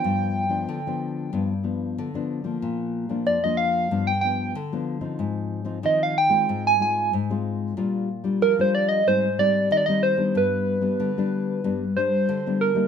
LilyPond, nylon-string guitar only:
\new Staff \with { instrumentName = "Nylon-string guitar" } { \time 4/4 \key g \phrygian \tempo 4 = 93 << { <f b d'>8. <f b d'>8 <f b d'>8. <f b d'>16 r16 <f b d'>8. <f b d'>8 <f bes d'>16~ | <f bes d'>8. <f bes d'>8 <f bes d'>8. <f b d'>16 r16 <f b d'>8 r16 <f b d'>8 <f c' ees'>16~ | <f c' ees'>8. <f c' ees'>16 <f c' ees'>8 r16 <aes c' f'>8. <aes c' f'>8 r16 <aes c' f'>8. | <g d' f'>8 r16 <g d' f'>8 <g d' f'>8. <g c' ees'>16 r16 <g c' ees'>8. <g c' ees'>8 <g b d'>16~ |
<g b d'>8. <g b d'>8 <g b d'>8. <g b d'>16 r16 <g d'>8. <g b d'>8 <g bes ees'>16 | } \\ { g,4 d4 g,4 d4 | bes,4 f,4 g,4 d4 | aes,4 ees4 aes,4 aes,4 | bes,4 f4 aes,4 ees4 |
g,4 d4 g,4 d4 | } >> }